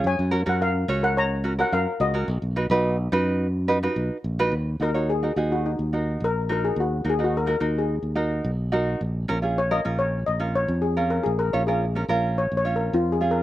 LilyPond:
<<
  \new Staff \with { instrumentName = "Steel pan" } { \time 4/4 \key ees \minor \tempo 4 = 107 <des'' aes''>8. <bes' ges''>16 <bes' f''>8. <bes' ges''>16 <des'' bes''>8. <bes' ges''>16 <bes' f''>8 <ges' ees''>8~ | <ges' ees''>2. r4 | r8 bes'8 aes'8. ges'16 ees'8 r8 bes'8 bes'16 aes'16 | ges'8 aes'16 ges'16 bes'16 bes'8 aes'8 r4. r16 |
r4 des''16 ees''8 des''8 ees''8 des''8 aes'8 bes'16 | aes'16 bes'8 aes'8 r8. \tuplet 3/2 { des''8 des''8 bes'8 f'8 aes'8 bes'8 } | }
  \new Staff \with { instrumentName = "Ukulele" } { \time 4/4 \key ees \minor r8 <des' ges' bes'>16 <des' ges' bes'>8 r16 <des' ges' des''>8 r8 <des' ges' bes'>16 <des' ges' bes'>8 r8 <des' ges' bes'>16 | r8 <dis' fis' b'>16 <dis' fis' b'>8 r16 <dis' fis' b'>8 r8 <dis' fis' b'>16 <dis' fis' b'>8 r8 <dis' fis' b'>16 | r8 <ees' ges' bes'>16 <ees' ges' des''>16 r16 <ees' ges' bes'>16 <ees' ges' aes'>8 r8 <ees' ges' bes'>8 r8 <ees' ges' bes'>8 | r8 <ees' ges' bes'>16 <ees' ges' bes'>16 r16 <ees' ges' bes'>16 <ees' ges' bes'>8 r8 <ees' ges' bes'>8 r8 <ees' ges' bes'>8 |
r8 <des' f' bes'>16 <des' f' aes'>16 r16 <des' f' bes'>16 <des' f' bes'>8 r8 <des' f' bes'>8 r8 <des' f' bes'>8 | r8 <des' f' des''>16 <des' f' bes'>16 r16 <des' f' bes'>16 <des' f' bes'>8 r8 <des' f' des''>8 r8 <des' f' aes'>8 | }
  \new Staff \with { instrumentName = "Fingered electric bass" } { \clef bass \time 4/4 \key ees \minor ges,16 ges,8 ges,8. des,4. ges,16 r16 des,8 | b,,16 b,,8 b,,8. fis,4. b,,16 r16 bes,,8 | ees,8 ees,4 ees,8. ees,8. bes,,4 | ees,8 ees,4 ees,8. ees,8. ces,4 |
bes,,8 bes,,4 bes,,8. bes,,8. f,4 | bes,,8 bes,,4 bes,,8. bes,,8. f,4 | }
>>